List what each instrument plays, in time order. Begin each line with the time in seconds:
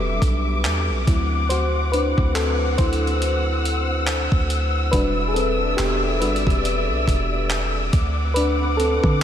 Already playing: 808-style bass E1, string section G3 E5 D6, fm electric piano G3 B3 C4 D4 F#4 G4 A4 B4
0.22 808-style bass B1, kick, closed hi-hat
0.65 808-style bass E2, clap, closed hi-hat
0.89 808-style bass B1
1.07 808-style bass D2, fm electric piano F#3 C4 E4, string section C4 F#5, kick, closed hi-hat
1.49 fm electric piano F#4 C5, closed hi-hat
1.92 fm electric piano D4 B4, closed hi-hat
2.18 808-style bass D2, kick
2.35 fm electric piano C4 A4, clap, closed hi-hat
2.78 808-style bass D2, fm electric piano E4 C5, string section E6, kick, closed hi-hat
2.93 closed hi-hat
3.07 closed hi-hat
3.22 closed hi-hat
3.65 closed hi-hat
4.07 clap, closed hi-hat
4.32 808-style bass D2, kick
4.50 closed hi-hat
4.91 808-style bass E1, fm electric piano G3 D4 F#4 B4, string section D5 E5, kick, closed hi-hat
5.28 fm electric piano G#4
5.34 fm electric piano C4 A4, closed hi-hat
5.77 808-style bass E1, fm electric piano B3 G4, clap, closed hi-hat
6.20 808-style bass G1, fm electric piano G3 D4 F#4 B4, closed hi-hat
6.36 closed hi-hat
6.47 808-style bass E1, kick, closed hi-hat
6.65 closed hi-hat
6.89 808-style bass B1
7.08 808-style bass E1, kick, closed hi-hat
7.50 clap, closed hi-hat
7.93 808-style bass D2, string section C4 F#5 D6, kick, closed hi-hat
8.34 fm electric piano D4 B4, closed hi-hat
8.77 fm electric piano C4 A4, closed hi-hat
9.03 808-style bass D3, kick